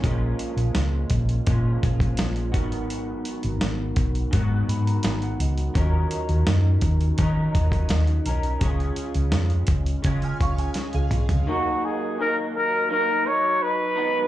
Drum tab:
HH |x-xxx-xxx-xxxxxx|x-xxx-xxx-xxxxxx|x-xxx-xxx-xxxxxx|xxxxxxxxxxxxxxxx|
SD |----o-------o---|----o-------o---|----o-------o---|----o-------o---|
T2 |----------------|----------------|----------------|--------------o-|
FT |----------------|----------------|----------------|---------------o|
BD |o-----o-o-oo--o-|------o-o-------|o-----o-o-oo----|o-----o-o-o-----|

HH |----------------|
SD |----------------|
T2 |----------------|
FT |----------------|
BD |----------------|